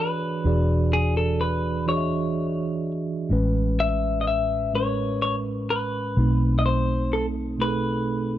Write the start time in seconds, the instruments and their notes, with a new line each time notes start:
Already playing: fingered electric bass E1, tine electric piano E3 D4 F#4 G#4 D5
0.00 clean electric guitar B4
0.44 fingered electric bass E1, tine electric piano E3 D4 F#4 G#4 D5
0.93 clean electric guitar G#4
1.17 clean electric guitar A4
1.41 clean electric guitar B4
1.86 tine electric piano E3 D4 F#4 G#4 D#5, clean electric guitar C#5
1.97 tine electric piano E5
3.29 fingered electric bass A1, tine electric piano A2 G#3 C#4 B4
3.80 clean electric guitar E5
4.21 clean electric guitar D#5
4.27 clean electric guitar E5
4.73 tine electric piano A2 G#3 C#4 A#4, clean electric guitar C#5
4.83 tine electric piano B4
5.22 clean electric guitar C#5
5.70 clean electric guitar B4
6.16 fingered electric bass B1, tine electric piano B2 A3 C4 D#4
6.59 clean electric guitar D#5
6.66 clean electric guitar C5
7.13 clean electric guitar A4
7.58 tine electric piano B2 A3 D#4 G#4
7.62 clean electric guitar B4
7.68 tine electric piano A4